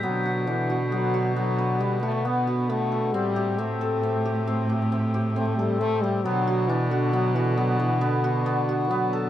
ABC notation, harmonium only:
X:1
M:7/4
L:1/8
Q:1/4=135
K:Bphr
V:1 name="Harmonium"
[D,B,F]12- [D,B,F]2 | [C,A,G]12- [C,A,G]2 | [D,B,F]12- [D,B,F]2 |]